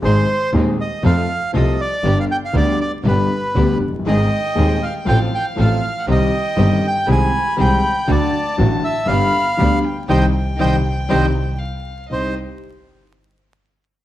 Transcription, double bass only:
\new Staff \with { instrumentName = "Double bass" } { \clef bass \time 4/4 \key c \minor \tempo 4 = 119 aes,,8 r8 ees,8 r8 f,8 r8 c,8 r8 | g,,8 r8 d,8 r8 g,,8 r8 d,8 fis,,8 | aes,,8 r8 ees,8 r8 a,,8 r8 a,,8 r8 | c,8 r8 g,,8 r8 c,8 r8 c,8 r8 |
d,8 r8 a,,8 r8 g,,8 r8 d,8 r8 | c,8 r8 c,8 r8 c,8 r4. | c,8 r2. r8 | }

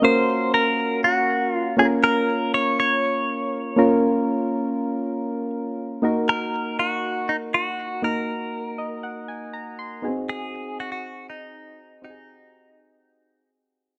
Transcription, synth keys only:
\new Staff \with { instrumentName = "Synth keys" } { \time 4/4 \key ees \dorian \tempo 4 = 120 << { r1 | r1 | r1 | r1 |
r4. ees''8 ges''8 aes''8 bes''8 c'''8 | r1 | r1 | } \\ { <bes des' ges' bes' f''>2.~ <bes des' ges' bes' f''>8 <bes des' f' a' bes'>8~ | <bes des' f' a' bes'>2.~ <bes des' f' a' bes'>8 <bes des' f' bes'>8~ | <bes des' f' bes'>2.~ <bes des' f' bes'>8 r8 | <bes ees' ges' bes'>1 |
<bes ees' ges' bes'>1 | <ces' c' ees' ges' aes'>1 | <c' ees' ges' g' aes'>1 | } >> }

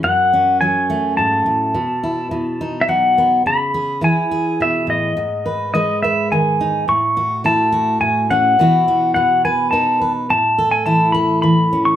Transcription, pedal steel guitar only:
\new Staff \with { instrumentName = "Pedal steel guitar" } { \time 3/4 \key b \mixolydian \tempo 4 = 105 fis''4 gis''4 a''4~ | a''4.~ a''16. e''32 fis''4 | b''4 gis''4 e''8 dis''8~ | dis''4 dis''8 e''8 gis''4 |
cis'''4 a''4 gis''8 fis''8~ | fis''4 fis''8 gis''8 a''8. r16 | a''8. gis''16 a''8 b''8 b''8. cis'''16 | }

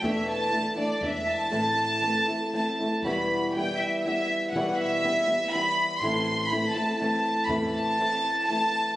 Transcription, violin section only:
\new Staff \with { instrumentName = "Violin section" } { \time 3/4 \key a \minor \tempo 4 = 120 e''8 a''4 d''8 e''8 a''8~ | a''2 a''4 | \key e \minor b''4 g''8 e''8 e''4 | fis''8 e''4. b''4 |
c'''4 b''8 a''8 a''4 | b''8 a''4. a''4 | }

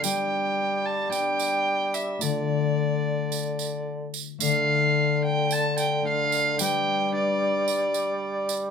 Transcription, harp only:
<<
  \new Staff \with { instrumentName = "Harp" } { \time 4/4 \key d \dorian \tempo 4 = 110 <b d' g'>2 <b d' g'>2 | <a d' f'>1 | <a d' a'>2. <a d' a'>4 | <d' b'>4 <d' b'>2. | }
  \new Staff \with { instrumentName = "Harp" } { \clef bass \time 4/4 \key d \dorian g1 | d1 | d1 | g1 | }
>>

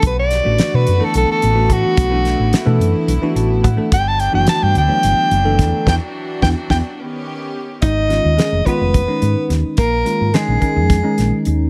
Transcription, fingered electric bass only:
\new Staff \with { instrumentName = "Fingered electric bass" } { \clef bass \time 7/8 \key b \phrygian \tempo 4 = 108 b,,8. a,,16 r16 b,16 fis,16 r16 b,,16 r16 a,,8 a,16 r16 | b,,8. a,,16 r16 b,16 fis,16 r16 b,,16 r16 a,,8 a,16 r16 | g,,8. fis,,16 r16 g,16 d,16 r16 g,,16 r16 fis,,8 e,16 r16 | e,16 r8. e,16 r16 e,16 r4. r16 |
\key gis \dorian gis,,8. dis,16 r16 eis,,16 r16 eis,,8 r16 gis,16 r16 dis,16 r16 | ais,,8 r16 gis,16 r16 ais,,16 r16 eis,8 r16 ais,,16 r16 dis,8 | }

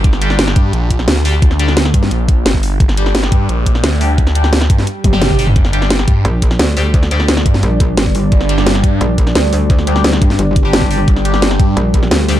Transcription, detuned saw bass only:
\new Staff \with { instrumentName = "Detuned saw bass" } { \clef bass \time 4/4 \key g \minor \tempo 4 = 174 g,,4. g,8 bes,,4 d,4~ | d,4. g,8 bes,,4 g,,4 | g,,4. g,8 bes,,4 d,4~ | d,4. g,8 r8 g,,4. |
g,,4. g,8 r2 | r4. g,8 r2 | g,,4. g,8 r2 | r4. g,8 r2 |
g,,4. g,8 r2 | }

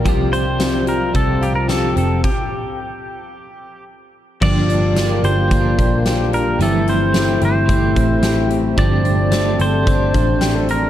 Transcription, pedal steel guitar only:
\new Staff \with { instrumentName = "Pedal steel guitar" } { \time 4/4 \key g \dorian \tempo 4 = 110 r8 c''4 bes'8 a'8 g'16 bes'16 a'8 a'8 | g'2. r4 | d''4. c''2 bes'8 | a'8 c''4 c''2 r8 |
d''4. c''2 bes'8 | }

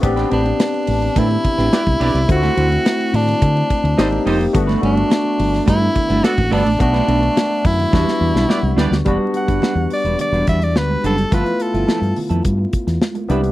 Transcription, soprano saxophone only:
\new Staff \with { instrumentName = "Soprano saxophone" } { \time 4/4 \key e \minor \tempo 4 = 106 r8 d'4. e'2 | fis'4. d'2 r8 | r8 d'4. e'4 fis'8 d'8 | d'4. e'2 r8 |
r8 fis''4 d''8 d''8 e''16 d''16 b'8 a'8 | b'8 a'4 r2 r8 | }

